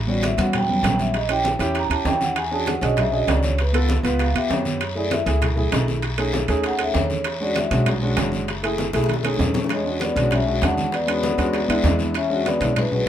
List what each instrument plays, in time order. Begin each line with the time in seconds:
Already playing: upright bass A1
0.07 grand piano G3 B3 C#4 F#4, vibraphone D5, high conga
0.23 vibraphone E5, high bongo, high conga, high timbale, low timbale, short guiro
0.37 upright bass E2, grand piano G3 B3 C#4 F#4, vibraphone F#5, high conga, high timbale, short guiro
0.53 vibraphone G5, high bongo, high conga, low conga, high timbale, long guiro
0.68 grand piano F#3 G3 B3 C#4, high conga
0.83 upright bass A#1, high bongo, low bongo, high conga, high timbale, low timbale, short guiro
0.99 vibraphone E5, high conga, short guiro
1.14 vibraphone D#5, high bongo, high conga, high timbale, long guiro
1.29 grand piano C#4 E4 G4, vibraphone G5, high bongo, high conga, high timbale
1.44 high bongo, high conga, low timbale, short guiro
1.59 upright bass E2, grand piano C#4 E4 G4, high bongo, high conga, high timbale, short guiro
1.74 vibraphone A#5, high bongo, high conga, high timbale, long guiro
1.90 upright bass D#2, grand piano C#4 E4 G4, vibraphone A5, high bongo, high conga, high timbale
2.05 upright bass E2, vibraphone G5, high bongo, low bongo, high conga, low timbale, short guiro
2.21 vibraphone F#5, high conga, short guiro
2.36 vibraphone G#5, high bongo, high conga, high timbale, long guiro
2.51 grand piano C#4 D4 F#4 G#4, vibraphone A5, high conga
2.66 vibraphone F#5, high bongo, high conga, high timbale, low timbale, short guiro
2.81 upright bass B1, grand piano C#4 D4 F#4 G#4, vibraphone D#5, high conga, high timbale, short guiro
2.97 vibraphone E5, high bongo, high conga, low conga, high timbale, long guiro
3.11 grand piano C#4 D4 F#4 G#4, vibraphone D#5, high conga
3.28 upright bass C#2, vibraphone D5, high bongo, low bongo, high conga, high timbale, low timbale, short guiro
3.43 vibraphone C#5, high conga, short guiro
3.58 vibraphone B4, high bongo, high conga, high timbale, long guiro
3.73 grand piano B3 F4 A4, high bongo, high conga, high timbale
3.89 high bongo, high conga, low timbale, short guiro
4.03 upright bass C#2, grand piano B3 F4 B4, high bongo, high timbale, short guiro
4.19 vibraphone F5, high bongo, high conga, high timbale, long guiro
4.34 upright bass E2, grand piano B3 F4 G4, vibraphone E5, high bongo, high conga, high timbale
4.50 upright bass F#2, vibraphone C#5, high bongo, low bongo, high conga, low timbale, short guiro
4.65 high conga, short guiro
4.81 high bongo, high conga, high timbale, long guiro
4.95 grand piano A3 E4 G#4, vibraphone D5, high conga
5.11 vibraphone E5, high bongo, high conga, high timbale, low timbale, short guiro
5.26 upright bass C#2, grand piano A3 E4 G#4, high conga, high timbale, short guiro
5.42 high bongo, high conga, low conga, high timbale, long guiro
5.56 grand piano A3 E4 G#4, high conga, low conga
5.72 upright bass B1, high bongo, low bongo, high conga, high timbale, low timbale, short guiro
5.88 high conga, short guiro
6.02 high bongo, high conga, high timbale, long guiro
6.18 grand piano A3 C#4 D#4 G#4, high bongo, high conga, high timbale
6.33 high bongo, high conga, low timbale, short guiro
6.48 upright bass D#2, grand piano A3 C#4 D#4 G#4, high bongo, high conga, high timbale, short guiro
6.64 vibraphone F#5, high bongo, high conga, high timbale, long guiro
6.78 grand piano A3 C#4 D#4 G#4, high bongo, high conga, high timbale
6.83 vibraphone E5
6.94 upright bass E2, vibraphone C#5, high bongo, low bongo, high conga, low timbale, short guiro
7.10 high conga, short guiro
7.24 high bongo, high conga, high timbale, long guiro
7.40 grand piano G#3 C#4 D4 F#4, vibraphone D5, high conga
7.55 vibraphone E5, high bongo, high conga, high timbale, low timbale, short guiro
7.71 upright bass B1, grand piano G#3 C#4 D4 F#4, high conga, high timbale, short guiro
7.86 high bongo, high conga, low conga, high timbale, long guiro
8.02 grand piano G#3 C#4 D4 F#4, high conga
8.17 upright bass F#1, high bongo, low bongo, high conga, high timbale, low timbale, short guiro
8.32 high conga, short guiro
8.48 high bongo, high conga, high timbale, long guiro
8.63 grand piano A3 E4 G#4, high bongo, high conga, high timbale
8.78 high bongo, high conga, low timbale, short guiro
8.93 upright bass B1, grand piano A3 E4 G#4, high bongo, high timbale, short guiro
9.04 high bongo
9.09 high conga, high timbale, long guiro
9.13 high bongo
9.23 grand piano A3 C#4 D#4 G#4, high conga, high timbale
9.34 low bongo
9.39 upright bass E2, low conga, low timbale, short guiro
9.44 low bongo
9.54 low bongo, low conga, short guiro
9.64 low bongo
9.69 trombone G#3, vibraphone C#5, high bongo, high conga, high timbale, long guiro
9.85 grand piano G#3 C#4 D4 F#4, high conga
10.00 trombone B3, vibraphone D5, high bongo, high conga, high timbale, low timbale, short guiro
10.16 upright bass B1, grand piano G#3 C#4 D4 F#4, high conga, high timbale, short guiro
10.31 trombone C#4, vibraphone E5, high bongo, high conga, low conga, high timbale, long guiro
10.46 grand piano G#3 C#4 D4 F#4, high conga
10.62 upright bass E2, trombone D4, vibraphone F#5, high bongo, low bongo, high conga, high timbale, low timbale, short guiro
10.77 high conga, short guiro
10.92 trombone B3, vibraphone D5, high bongo, high conga, high timbale, long guiro
11.07 grand piano G#3 C#4 D4 F#4, high bongo, high conga, high timbale
11.23 high bongo, high conga, low timbale, short guiro
11.37 upright bass E2, grand piano G#3 C#4 D4 F#4, high bongo, high conga, high timbale, short guiro
11.53 high bongo, high conga, high timbale, long guiro
11.68 upright bass D2, grand piano G#3 B3 D4 E4, high bongo, high conga, high timbale
11.84 upright bass E2, high bongo, low bongo, high conga, low timbale, short guiro
11.99 high conga, short guiro
12.14 trombone C#4, vibraphone E5, high bongo, high timbale, long guiro
12.30 grand piano G#3 C#4 D4 F#4, high conga
12.45 trombone B3, vibraphone D5, high bongo, high conga, high timbale, low timbale, short guiro
12.60 upright bass B1, grand piano G#3 C#4 D4 E4, high conga, high timbale, short guiro
12.76 trombone G#3, vibraphone B4, high bongo, high conga, low conga, high timbale, long guiro
12.91 grand piano G#3 C#4 D4 F#4, trombone G#3, vibraphone B4, high conga, low conga